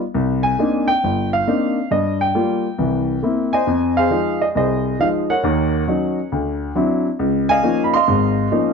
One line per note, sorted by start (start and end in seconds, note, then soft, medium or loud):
0.15 0.53 C2 medium
0.43 0.84 G#5 medium
0.59 0.89 A#3 medium
0.59 0.89 C4 soft
0.59 0.89 D4 medium
0.59 0.90 D#4 medium
0.88 1.29 G5 medium
1.04 1.41 G1 medium
1.33 1.88 F5 medium
1.47 1.77 A#3 medium
1.47 1.78 C4 medium
1.47 1.78 D4 soft
1.47 1.78 D#4 medium
1.91 2.29 G2 medium
1.91 2.21 D#5 medium
2.21 3.49 G5 medium
2.35 2.65 G3 medium
2.35 2.65 A#3 soft
2.35 2.66 F4 medium
2.79 3.17 C2 medium
2.79 3.17 E3 medium
3.23 3.53 A#3 soft
3.23 3.54 C4 soft
3.23 3.54 E4 medium
3.53 3.97 C5 medium
3.53 4.37 D#5 medium
3.53 3.98 G#5 medium
3.67 4.05 F2 medium
3.97 4.55 G#4 medium
3.97 4.56 C5 medium
3.97 4.42 F5 loud
4.10 4.41 F3 medium
4.10 4.42 G#3 soft
4.10 4.42 D#4 medium
4.42 4.47 D#5 medium
4.55 4.94 C2 medium
4.55 5.40 G#4 medium
4.55 5.41 C5 medium
4.55 4.97 D#5 medium
4.99 5.30 F3 medium
4.99 5.30 G#3 soft
4.99 5.30 D#4 medium
4.99 5.07 F5 medium
5.30 6.29 A#4 medium
5.30 6.29 C#5 medium
5.30 7.01 F#5 medium
5.43 5.82 D#2 medium
5.43 5.82 D#3 medium
5.87 6.18 F#3 medium
5.87 6.18 C#4 medium
5.87 6.19 D#4 medium
6.32 6.70 D2 medium
6.75 7.06 F#3 medium
6.75 7.06 C4 medium
6.75 7.06 D4 medium
6.75 7.07 E4 medium
7.19 7.58 C#2 medium
7.49 7.95 D#5 medium
7.49 7.94 F5 medium
7.49 7.81 G#5 loud
7.63 7.94 F3 medium
7.63 7.94 A#3 medium
7.63 7.94 C#4 medium
7.63 7.94 D#4 medium
7.84 7.93 B5 medium
7.94 8.73 D#5 medium
7.94 8.73 F5 medium
7.94 8.73 C6 loud
8.08 8.46 G#1 medium
8.08 8.46 G#2 medium
8.52 8.73 F3 medium
8.52 8.73 A#3 soft
8.52 8.73 C#4 medium
8.52 8.73 D#4 medium